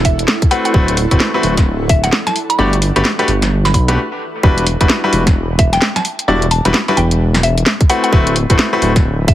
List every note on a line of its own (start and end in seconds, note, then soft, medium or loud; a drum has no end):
0.00 0.25 E1 medium
0.00 3.97 E4 medium
0.00 3.97 A4 medium
0.00 3.97 D5 medium
0.00 3.97 F#5 medium
0.05 0.49 E5 medium
0.05 kick medium
0.05 open hi-hat loud
0.19 closed hi-hat medium
0.28 snare loud
0.42 kick loud
0.42 closed hi-hat medium
0.51 0.72 A3 medium
0.51 0.72 C4 medium
0.51 0.72 E4 medium
0.51 0.72 F#4 medium
0.51 0.72 B4 medium
0.51 0.60 F#5 medium
0.51 open hi-hat medium
0.65 0.71 F#5 medium
0.65 closed hi-hat medium
0.74 1.06 D1 medium
0.74 0.94 A3 medium
0.74 0.94 C4 medium
0.74 0.94 E4 medium
0.74 0.94 F#4 medium
0.74 0.94 B4 loud
0.74 kick loud
0.88 closed hi-hat medium
0.97 open hi-hat loud
1.11 1.18 D1 loud
1.11 1.29 A3 medium
1.11 1.29 C4 medium
1.11 1.29 E4 medium
1.11 1.29 F#4 medium
1.11 1.29 B4 medium
1.11 kick medium
1.11 closed hi-hat medium
1.20 snare loud
1.34 1.52 A3 medium
1.34 1.52 C4 medium
1.34 1.52 E4 medium
1.34 1.52 F#4 medium
1.34 1.52 B4 loud
1.43 2.09 D1 medium
1.43 open hi-hat medium
1.57 kick loud
1.57 snare soft
1.57 closed hi-hat medium
1.89 2.01 E5 medium
1.89 kick loud
1.89 open hi-hat loud
2.04 2.12 F#5 medium
2.04 snare soft
2.04 closed hi-hat medium
2.13 snare loud
2.27 2.35 A5 medium
2.27 snare soft
2.27 closed hi-hat medium
2.36 open hi-hat medium
2.50 2.57 B5 medium
2.50 closed hi-hat medium
2.59 2.91 G1 loud
2.59 2.73 A3 medium
2.59 2.73 D4 medium
2.59 2.73 F#4 medium
2.59 2.73 G4 medium
2.59 2.73 D5 medium
2.59 2.72 B5 medium
2.73 closed hi-hat medium
2.82 open hi-hat loud
2.96 3.03 G1 medium
2.96 3.05 A3 medium
2.96 3.05 D4 medium
2.96 3.05 F#4 medium
2.96 3.05 G4 medium
2.96 3.05 B4 loud
2.96 closed hi-hat medium
3.05 snare loud
3.19 3.28 A3 medium
3.19 3.28 D4 medium
3.19 3.28 F#4 medium
3.19 3.28 G4 medium
3.19 3.28 B4 loud
3.19 closed hi-hat soft
3.28 3.74 G1 medium
3.28 open hi-hat medium
3.42 snare soft
3.42 closed hi-hat medium
3.65 3.71 B5 medium
3.65 snare medium
3.65 closed hi-hat soft
3.74 3.97 B1 loud
3.74 3.83 B5 medium
3.74 kick medium
3.74 open hi-hat loud
3.88 3.97 A3 medium
3.88 3.97 D4 medium
3.88 3.97 F#4 medium
3.88 3.97 G4 medium
3.88 3.97 B4 loud
3.88 closed hi-hat medium
4.43 4.76 E1 loud
4.43 4.63 G3 medium
4.43 4.63 D4 medium
4.43 4.63 E4 medium
4.43 4.63 F#4 medium
4.43 4.63 B4 loud
4.43 kick loud
4.58 closed hi-hat medium
4.67 open hi-hat loud
4.81 4.88 E1 loud
4.81 4.99 G3 medium
4.81 4.99 D4 medium
4.81 4.99 E4 medium
4.81 4.99 F#4 medium
4.81 4.98 B4 medium
4.81 kick medium
4.81 closed hi-hat medium
4.90 snare loud
5.04 5.22 G3 medium
5.04 5.22 D4 medium
5.04 5.22 E4 medium
5.04 5.22 F#4 medium
5.04 5.22 B4 loud
5.13 5.79 E1 loud
5.13 open hi-hat medium
5.27 kick loud
5.27 snare medium
5.27 closed hi-hat medium
5.59 5.70 E5 medium
5.59 kick loud
5.59 open hi-hat loud
5.73 5.81 G5 medium
5.73 snare soft
5.73 closed hi-hat medium
5.82 snare loud
5.96 6.04 A5 medium
5.96 snare medium
5.96 closed hi-hat medium
6.05 open hi-hat loud
6.19 closed hi-hat medium
6.28 6.60 E1 loud
6.28 6.42 G3 medium
6.28 6.42 D4 medium
6.28 6.42 E4 medium
6.28 6.42 F#4 medium
6.28 6.42 D5 loud
6.42 closed hi-hat soft
6.51 6.64 A5 medium
6.51 open hi-hat loud
6.65 6.72 E1 loud
6.65 6.74 G3 medium
6.65 6.74 D4 medium
6.65 6.74 E4 medium
6.65 6.74 F#4 medium
6.65 6.74 B4 loud
6.65 closed hi-hat medium
6.74 snare loud
6.88 6.98 G3 medium
6.88 6.98 D4 medium
6.88 6.98 E4 medium
6.88 6.98 F#4 medium
6.88 6.98 B4 loud
6.88 closed hi-hat soft
6.97 7.63 E1 loud
6.97 7.10 G5 loud
6.97 open hi-hat medium
7.11 closed hi-hat medium
7.34 snare medium
7.34 closed hi-hat soft
7.43 7.88 E5 medium
7.43 open hi-hat loud
7.58 closed hi-hat medium
7.66 snare loud
7.81 kick loud
7.81 closed hi-hat medium
7.90 8.10 A3 medium
7.90 8.10 C4 medium
7.90 8.10 E4 medium
7.90 8.10 F#4 medium
7.90 8.10 B4 loud
7.90 7.99 F#5 medium
7.90 open hi-hat loud
8.04 8.09 F#5 medium
8.04 closed hi-hat medium
8.13 8.45 D1 medium
8.13 8.32 A3 medium
8.13 8.32 C4 medium
8.13 8.32 E4 medium
8.13 8.32 F#4 medium
8.13 8.32 B4 loud
8.13 kick loud
8.27 closed hi-hat medium
8.36 open hi-hat loud
8.50 8.57 D1 loud
8.50 8.68 A3 medium
8.50 8.68 C4 medium
8.50 8.68 E4 medium
8.50 8.68 F#4 medium
8.50 8.68 B4 medium
8.50 kick medium
8.50 closed hi-hat medium
8.59 snare loud
8.73 8.91 A3 medium
8.73 8.91 C4 medium
8.73 8.91 E4 medium
8.73 8.91 F#4 medium
8.73 8.91 B4 loud
8.82 9.34 D1 medium
8.82 open hi-hat medium
8.96 kick loud
8.96 snare medium
8.96 closed hi-hat medium
9.28 9.34 E5 medium
9.28 kick loud
9.28 open hi-hat loud